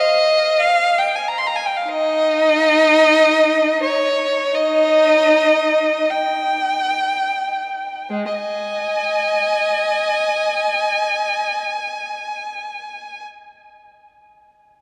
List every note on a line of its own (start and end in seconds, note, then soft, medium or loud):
0.00 0.60 D#5 medium
0.60 0.98 F5 medium
0.99 1.15 G5 medium
1.15 1.28 G#5 soft
1.28 1.38 A#5 soft
1.38 1.47 C6 medium
1.47 1.55 A#5 medium
1.56 1.65 G#5 medium
1.66 1.77 G5 soft
1.77 1.89 F5 soft
1.89 3.79 D#4 medium
1.89 3.83 D#5 medium
3.83 4.53 C#5 medium
4.54 6.06 D#4 medium
4.54 6.10 D#5 medium
6.11 8.10 G5 medium
8.10 8.33 G#3 soft
8.33 11.58 D#5 soft
8.33 13.23 G#5 medium